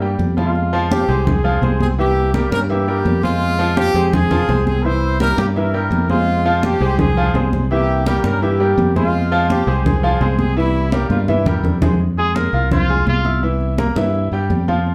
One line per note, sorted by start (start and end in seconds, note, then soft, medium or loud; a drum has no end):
0.00 0.15 G2 medium
0.00 0.16 G3 medium
0.00 0.31 G3 medium
0.00 0.16 A#3 medium
0.00 0.31 G4 medium
0.00 0.31 G5 medium
0.00 high conga soft
0.19 1.03 F2 medium
0.19 high conga medium
0.37 0.52 F3 medium
0.37 0.88 G#3 medium
0.37 0.52 F4 medium
0.37 0.87 F4 loud
0.37 0.52 F5 medium
0.37 high conga medium
0.55 high conga soft
0.73 1.02 F3 loud
0.73 1.02 F4 medium
0.73 1.03 F5 medium
0.73 high conga soft
0.91 1.25 C4 medium
0.91 1.24 G4 medium
0.91 high conga loud
1.08 1.58 C2 loud
1.08 1.38 G#3 medium
1.08 1.38 G#4 medium
1.08 1.38 C5 medium
1.08 high conga soft
1.27 1.78 C4 medium
1.27 1.77 G#4 medium
1.27 high conga soft
1.27 low conga loud
1.44 1.59 F3 medium
1.44 1.59 F4 medium
1.44 1.59 F5 medium
1.44 high conga soft
1.62 2.46 C2 medium
1.62 1.92 G#3 medium
1.62 1.92 G#4 medium
1.62 1.92 C5 medium
1.62 high conga medium
1.80 1.90 C4 medium
1.80 1.89 G#4 loud
1.80 high conga medium
1.98 2.28 E3 medium
1.98 2.33 A#3 medium
1.98 2.28 E4 medium
1.98 2.32 G4 loud
1.98 2.28 E5 medium
1.98 high conga soft
2.16 high conga soft
2.34 2.63 G3 medium
2.34 2.51 A#3 medium
2.34 2.64 G4 medium
2.34 2.51 G4 loud
2.34 2.64 A#4 medium
2.34 high conga loud
2.52 3.02 G2 loud
2.52 2.61 C#4 medium
2.52 2.61 A#4 loud
2.52 high conga loud
2.69 2.84 E3 medium
2.69 3.21 A#3 medium
2.69 2.84 E4 medium
2.69 3.20 G4 loud
2.69 2.85 E5 medium
2.69 high conga soft
2.88 3.17 G3 medium
2.88 3.17 G4 medium
2.88 3.17 A#4 medium
2.88 high conga soft
3.05 3.89 F2 loud
3.05 high conga medium
3.23 3.53 G#3 medium
3.23 3.78 G#3 medium
3.23 3.77 F4 loud
3.23 3.53 G#4 medium
3.23 3.53 C5 medium
3.23 high conga medium
3.42 high conga soft
3.59 3.88 F3 loud
3.59 3.89 F4 loud
3.59 3.89 F5 loud
3.77 4.11 C4 medium
3.77 4.11 G4 loud
3.77 high conga loud
3.94 4.44 F2 loud
3.94 4.24 G#3 medium
3.94 4.25 G#4 medium
3.94 4.25 C5 medium
3.94 high conga soft
4.13 4.67 C4 medium
4.13 4.66 G#4 loud
4.13 high conga soft
4.13 low conga medium
4.31 4.45 F3 medium
4.31 4.46 F4 loud
4.31 4.46 F5 medium
4.31 high conga soft
4.31 low conga medium
4.49 5.32 C2 loud
4.49 4.78 G#3 medium
4.49 4.78 G#4 medium
4.49 4.78 C5 medium
4.49 high conga medium
4.67 4.84 C4 medium
4.67 4.84 G#4 loud
4.67 high conga medium
4.85 5.14 E3 medium
4.85 5.14 E4 medium
4.85 5.21 E4 medium
4.85 5.20 C5 loud
4.85 5.14 E5 medium
4.85 high conga soft
5.02 high conga soft
5.20 5.50 G3 medium
5.20 5.38 E4 medium
5.20 5.50 G4 medium
5.20 5.37 A#4 loud
5.20 5.50 A#4 medium
5.20 high conga loud
5.38 5.88 G2 loud
5.38 5.48 A#3 medium
5.38 5.47 G4 medium
5.38 high conga medium
5.56 5.71 E3 medium
5.56 5.71 E4 medium
5.56 6.07 E4 medium
5.56 6.06 A#4 medium
5.56 5.71 E5 medium
5.56 high conga soft
5.74 6.03 G3 medium
5.74 6.03 G4 medium
5.74 6.03 A#4 medium
5.74 high conga soft
5.91 6.75 F2 loud
5.91 high conga medium
6.09 6.39 G#3 medium
6.09 6.61 G#3 medium
6.09 6.60 F4 loud
6.09 6.39 G#4 medium
6.09 6.39 C5 medium
6.09 high conga medium
6.28 high conga soft
6.45 6.75 F3 medium
6.45 6.75 F4 loud
6.45 6.75 F5 loud
6.45 high conga soft
6.63 6.99 C4 medium
6.63 6.99 G4 loud
6.63 high conga loud
6.80 7.31 C2 loud
6.80 7.10 G#3 medium
6.80 7.10 G#4 medium
6.80 7.11 C5 medium
6.80 high conga soft
6.99 7.49 C4 medium
6.99 7.49 G#4 loud
6.99 high conga soft
6.99 low conga medium
7.17 7.32 F3 medium
7.17 7.32 F4 medium
7.17 7.32 F5 medium
7.17 high conga soft
7.34 8.18 C2 loud
7.34 7.64 G#3 medium
7.34 7.64 G#4 medium
7.34 7.64 C5 medium
7.34 high conga medium
7.53 high conga medium
7.71 8.00 E3 medium
7.71 8.04 A#3 medium
7.71 8.00 E4 medium
7.71 8.04 G4 loud
7.71 8.00 E5 medium
7.71 high conga soft
7.89 high conga soft
8.06 8.36 G3 medium
8.06 8.24 A#3 medium
8.06 8.36 G4 medium
8.06 8.23 G4 medium
8.06 8.36 A#4 medium
8.06 high conga loud
8.24 8.74 G2 medium
8.24 8.42 C#4 medium
8.24 8.41 A#4 medium
8.24 high conga loud
8.42 8.56 E3 medium
8.42 8.93 A#3 medium
8.42 8.57 E4 medium
8.42 8.92 G4 medium
8.42 8.57 E5 medium
8.42 high conga soft
8.60 8.89 G3 medium
8.60 8.89 G4 medium
8.60 8.89 A#4 medium
8.60 high conga soft
8.77 9.61 F2 loud
8.77 high conga medium
8.96 9.25 G#3 medium
8.96 9.47 G#3 medium
8.96 9.46 F4 loud
8.96 9.25 G#4 medium
8.96 9.25 C5 medium
8.96 high conga medium
9.14 high conga soft
9.32 9.61 F3 loud
9.32 9.61 F4 loud
9.32 9.61 F5 loud
9.32 high conga soft
9.50 9.83 C4 medium
9.50 9.83 G4 medium
9.50 high conga loud
9.67 10.17 C2 loud
9.67 9.96 G#3 medium
9.67 9.97 G#4 medium
9.67 9.97 C5 medium
9.67 high conga soft
9.85 10.39 C4 medium
9.85 10.37 G#4 medium
9.85 high conga soft
9.85 low conga medium
10.03 10.18 F3 medium
10.03 10.18 F4 medium
10.03 10.18 F5 medium
10.03 high conga soft
10.21 11.04 C2 loud
10.21 10.50 G#3 medium
10.21 10.50 G#4 medium
10.21 10.50 C5 medium
10.21 high conga medium
10.39 10.56 C4 medium
10.39 10.55 G#4 medium
10.39 high conga medium
10.57 10.86 E3 medium
10.57 10.90 G3 medium
10.57 10.86 E4 medium
10.57 10.90 E4 loud
10.57 10.86 E5 medium
10.57 high conga soft
10.75 high conga soft
10.92 11.22 G3 medium
10.92 11.10 A#3 medium
10.92 11.22 G4 medium
10.92 11.09 G4 medium
10.92 11.22 A#4 medium
10.92 high conga medium
11.10 11.60 G2 medium
11.10 11.27 G#3 medium
11.10 11.27 F4 medium
11.10 high conga medium
11.28 11.43 E3 medium
11.28 11.82 G3 medium
11.28 11.82 E4 medium
11.28 11.43 E4 medium
11.28 11.43 E5 medium
11.28 high conga medium
11.46 11.75 G3 medium
11.46 11.75 G4 medium
11.46 11.76 A#4 medium
11.46 low conga medium
11.63 12.47 F2 loud
11.63 low conga medium
11.82 11.97 G#3 medium
11.82 11.97 G#4 medium
11.82 11.97 C5 medium
11.82 low conga loud
12.00 high conga soft
12.18 12.47 G#3 medium
12.18 12.37 G#4 loud
12.18 12.47 G#4 medium
12.18 12.48 G#5 medium
12.18 high conga soft
12.35 12.70 A#4 medium
12.35 high conga loud
12.53 13.03 C2 medium
12.53 12.68 F4 medium
12.53 12.68 F5 medium
12.53 12.68 F6 medium
12.53 high conga soft
12.71 12.86 C4 medium
12.71 13.06 F4 loud
12.71 12.86 C5 medium
12.71 12.87 C6 medium
12.71 high conga soft
12.71 low conga medium
12.89 13.19 G#3 medium
12.89 13.19 G#4 medium
12.89 13.19 G#5 medium
12.89 high conga soft
13.07 13.91 C2 medium
13.07 13.42 F4 loud
13.07 high conga medium
13.25 13.39 E4 medium
13.25 13.40 E5 medium
13.25 13.40 E6 medium
13.25 high conga medium
13.43 13.72 E3 medium
13.43 13.72 E4 medium
13.43 13.72 E5 medium
13.43 high conga soft
13.61 high conga soft
13.78 13.93 A#3 medium
13.78 13.93 A#4 medium
13.78 13.94 A#5 medium
13.78 high conga loud
13.96 14.29 G2 loud
13.96 14.26 E3 medium
13.96 14.26 E4 medium
13.96 14.26 E5 medium
13.96 high conga medium
14.14 high conga soft
14.32 14.48 G2 medium
14.32 14.62 G3 medium
14.32 14.62 G4 medium
14.32 14.62 G5 medium
14.32 high conga soft
14.50 14.95 F2 loud
14.50 high conga medium
14.68 14.95 F3 medium
14.68 14.95 F4 medium
14.68 14.95 F5 medium
14.68 high conga medium
14.86 high conga soft